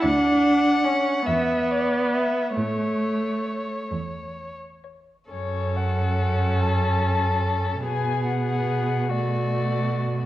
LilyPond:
<<
  \new Staff \with { instrumentName = "Violin" } { \time 6/8 \key a \major \tempo 4. = 48 r4 fis''8 r4 d''8 | r4 cis''8 r4 cis''8 | \key fis \minor cis''8 fis''4 a''4. | gis''8 fis''4 d''4. | }
  \new Staff \with { instrumentName = "Violin" } { \time 6/8 \key a \major fis''4. e''8 d''8 e''8 | cis''2~ cis''16 r8. | \key fis \minor a'2. | gis'4. fis'4. | }
  \new Staff \with { instrumentName = "Viola" } { \time 6/8 \key a \major d'4 cis'8 b4. | a4. r4. | \key fis \minor cis'2. | b4. a4. | }
  \new Staff \with { instrumentName = "Cello" } { \clef bass \time 6/8 \key a \major d,4. e,4. | a,4. e,4. | \key fis \minor fis,2. | b,2. | }
>>